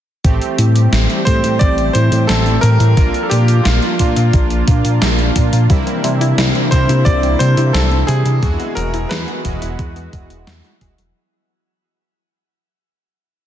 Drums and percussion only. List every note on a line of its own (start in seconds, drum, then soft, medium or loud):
0.24 kick loud
0.24 closed hi-hat medium
0.41 closed hi-hat soft
0.59 closed hi-hat medium
0.76 closed hi-hat soft
0.93 snare loud
0.93 closed hi-hat medium
1.10 closed hi-hat soft
1.27 kick medium
1.27 closed hi-hat medium
1.44 closed hi-hat medium
1.61 kick loud
1.61 closed hi-hat medium
1.78 closed hi-hat soft
1.95 closed hi-hat medium
2.12 closed hi-hat medium
2.29 snare loud
2.29 closed hi-hat medium
2.46 closed hi-hat soft
2.63 closed hi-hat medium
2.80 closed hi-hat medium
2.97 kick loud
2.97 closed hi-hat medium
3.14 closed hi-hat soft
3.31 closed hi-hat loud
3.48 closed hi-hat medium
3.65 snare loud
3.65 closed hi-hat medium
3.82 closed hi-hat soft
3.99 kick medium
3.99 closed hi-hat medium
4.16 closed hi-hat medium
4.33 kick loud
4.33 closed hi-hat medium
4.50 closed hi-hat soft
4.68 kick loud
4.68 closed hi-hat medium
4.85 closed hi-hat medium
5.02 snare loud
5.02 closed hi-hat medium
5.19 closed hi-hat soft
5.36 kick medium
5.36 closed hi-hat medium
5.53 closed hi-hat medium
5.70 kick loud
5.70 closed hi-hat medium
5.87 closed hi-hat soft
6.04 closed hi-hat medium
6.21 closed hi-hat soft
6.38 snare loud
6.38 closed hi-hat medium
6.55 closed hi-hat soft
6.72 kick medium
6.72 closed hi-hat medium
6.89 closed hi-hat medium
7.06 kick loud
7.06 closed hi-hat medium
7.23 closed hi-hat soft
7.40 closed hi-hat medium
7.57 closed hi-hat medium
7.74 snare loud
7.74 closed hi-hat medium
7.91 closed hi-hat soft
8.08 closed hi-hat medium
8.26 closed hi-hat medium
8.43 kick loud
8.43 closed hi-hat soft
8.60 closed hi-hat soft
8.77 closed hi-hat medium
8.94 closed hi-hat soft
9.11 snare loud
9.11 closed hi-hat medium
9.28 closed hi-hat soft
9.45 kick medium
9.45 closed hi-hat medium
9.62 closed hi-hat medium
9.79 kick loud
9.79 closed hi-hat medium
9.96 closed hi-hat soft
10.13 kick loud
10.13 closed hi-hat medium
10.30 closed hi-hat medium
10.47 snare loud
10.47 closed hi-hat soft
10.64 closed hi-hat soft
10.81 kick medium
10.81 closed hi-hat medium
10.98 closed hi-hat medium